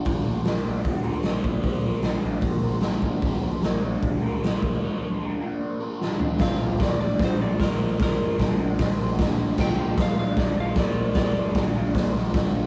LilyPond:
<<
  \new Staff \with { instrumentName = "Electric slide guitar" } { \time 4/4 \key bes \lydian \tempo 4 = 152 r1 | r1 | r1 | r1 |
f''4 d''8 d''8 c''8 d''8 bes'4 | bes'2.~ bes'8 r8 | g''4 f''8 f''8 d''8 f''8 d''4 | d''2.~ d''8 r8 | }
  \new Staff \with { instrumentName = "Overdriven electric guitar" } { \time 4/4 \key bes \lydian <bes, f bes d' f' bes'>8 <bes d' f' bes'>8 <bes d' f' bes'>8 <bes d' f' bes'>4 <bes d' f' bes'>8 <bes, f bes d' f' bes'>4 | <bes, f bes d' f' bes'>8 <bes d' f' bes'>8 <bes d' f' bes'>8 <bes d' f' bes'>4 <bes d' f' bes'>8 <bes, f bes d' f' bes'>4 | <bes, f bes d' f' bes'>8 <bes d' f' bes'>8 <bes d' f' bes'>8 <bes d' f' bes'>4 <bes d' f' bes'>8 <bes, f bes d' f' bes'>4 | <bes, f bes d' f' bes'>8 <bes d' f' bes'>8 <bes d' f' bes'>8 <bes d' f' bes'>4 <bes d' f' bes'>8 <bes, f bes d' f' bes'>4 |
<bes, f bes d' f' bes'>4 <bes d' f' bes'>8 <bes d' f' bes'>8 <bes, f bes d' f' bes'>8 <bes d' f' bes'>8 <bes d' f' bes'>4 | <bes, f bes d' f' bes'>4 <bes d' f' bes'>8 <bes d' f' bes'>8 <bes, f bes d' f' bes'>8 <bes d' f' bes'>8 <bes d' f' bes'>4 | <bes, f bes d' f' bes'>4 <bes d' f' bes'>8 <bes d' f' bes'>8 <bes, f bes d' f' bes'>8 <bes d' f' bes'>8 <bes d' f' bes'>4 | <bes, f bes d' f' bes'>4 <bes d' f' bes'>8 <bes d' f' bes'>8 <bes, f bes d' f' bes'>8 <bes d' f' bes'>8 <bes d' f' bes'>4 | }
  \new Staff \with { instrumentName = "Picked electric bass" } { \clef bass \time 4/4 \key bes \lydian bes,,8 bes,,8 bes,,8 bes,,8 bes,,8 d,8 bes,,8 bes,,8 | bes,,8 bes,,8 bes,,8 bes,,8 bes,,8 bes,,8 bes,,8 bes,,8 | bes,,8 bes,,8 bes,,8 bes,,8 bes,,8 d,8 bes,,8 bes,,8 | r1 |
bes,,8 bes,,8 bes,,4 bes,,4 bes,,4 | bes,,8 g,,8 bes,,4 bes,,8 bes,,8 bes,,4 | bes,,8 bes,,8 bes,,4 bes,,4 bes,,4 | bes,,8 g,,8 bes,,4 bes,,8 bes,,8 bes,,4 | }
  \new DrumStaff \with { instrumentName = "Drums" } \drummode { \time 4/4 <hho bd>4 <hho sn>4 <hho bd>4 <hho sn>8 bd8 | <hho bd>4 <hho sn>4 <hho bd>4 <hho sn>8 bd8 | <hho bd>4 <hho sn>4 <hho bd>4 <hho sn>8 bd8 | r4 r4 r4 sn8 tomfh8 |
<hho bd sn>4 <hho bd sn>4 <hho bd sn>4 <hho bd sn>4 | <hho bd sn>4 <hho bd sn>4 <hho bd sn>4 <hho bd sn>4 | <cymc bd sn>4 <hho bd sn>4 <hho bd sn>4 <hho bd sn>4 | <hho bd sn>4 <hho bd sn>4 <hho bd sn>4 <hho bd sn>4 | }
>>